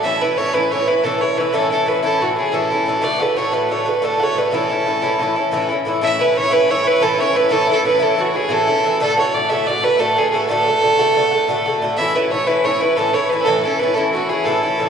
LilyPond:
<<
  \new Staff \with { instrumentName = "Fiddle" } { \time 9/8 \key a \major \tempo 4. = 121 e''8 b'8 cis''8 b'8 cis''8 b'8 a'8 cis''8 b'8 | a'8 a'8 b'8 a'8 fis'8 gis'8 a'4. | d''8 b'8 cis''8 b'8 cis''8 b'8 a'8 cis''8 b'8 | a'2.~ a'8 r4 |
e''8 b'16. b'32 cis''8 b'8 cis''8 b'8 a'8 cis''8 b'8 | a'8 a'8 b'8 a'8 fis'8 gis'8 a'4. | a'8 cis''8 d''8 e''8 d''8 b'8 a'8 gis'16. gis'32 a'8 | a'1 r8 |
e''8 b'8 cis''8 b'8 cis''8 b'8 a'8 cis''8 b'16. b'32 | a'8 a'8 b'8 a'8 fis'8 gis'8 a'4. | }
  \new Staff \with { instrumentName = "Bouzouki" } { \time 9/8 \key a \major <a, e cis' e'>8 <e cis' e'>8 <a, e cis' e'>8 <a, e cis' e'>8 <a, e cis' e'>8 <e cis' e'>8 <a, e cis' e'>8 <e cis' e'>8 <a, e cis' e'>8 | <a, e cis' e'>8 <e cis' e'>8 <a, e cis' e'>8 <a, e cis' e'>8 <a, e cis' e'>8 <e cis' e'>8 <a, e cis' e'>8 <e cis' e'>8 <a, e cis' e'>8 | <a, d a fis'>8 <d a fis'>8 <a, d a fis'>8 <a, d a fis'>8 <a, d a fis'>8 <d a fis'>8 <a, d a fis'>8 <d a fis'>8 <a, d a fis'>8 | <a, e cis' e'>8 <e cis' e'>8 <a, e cis' e'>8 <a, e cis' e'>8 <a, e cis' e'>8 <e cis' e'>8 <a, e cis' e'>8 <e cis' e'>8 <a, e cis' e'>8 |
<a, e cis' e'>8 <e cis' e'>8 <a, e cis' e'>8 <a, e cis' e'>8 <a, e cis' e'>8 <e cis' e'>8 <a, e cis' e'>8 <e cis' e'>8 <a, e cis' e'>8 | <a, e cis' e'>8 <e cis' e'>8 <a, e cis' e'>8 <a, e cis' e'>8 <a, e cis' e'>8 <e cis' e'>8 <a, e cis' e'>8 <e cis' e'>8 <a, e cis' e'>8 | <a, d a fis'>8 <d a fis'>8 <a, d a fis'>8 <a, d a fis'>8 <a, d a fis'>8 <d a fis'>8 <a, d a fis'>8 <d a fis'>8 <a, d a fis'>8 | <a, d a fis'>8 <d a fis'>8 <a, d a fis'>8 <a, d a fis'>8 <a, d a fis'>8 <d a fis'>8 <a, d a fis'>8 <d a fis'>8 <a, d a fis'>8 |
<a, e cis' e'>8 <e cis' e'>8 <a, e cis' e'>8 <a, e cis' e'>8 <a, e cis' e'>8 <e cis' e'>8 <a, e cis' e'>8 <e cis' e'>8 <a, e cis' e'>8 | <a, e cis' e'>8 <e cis' e'>8 <a, e cis' e'>8 <a, e cis' e'>8 <a, e cis' e'>8 <e cis' e'>8 <a, e cis' e'>8 <e cis' e'>8 <a, e cis' e'>8 | }
>>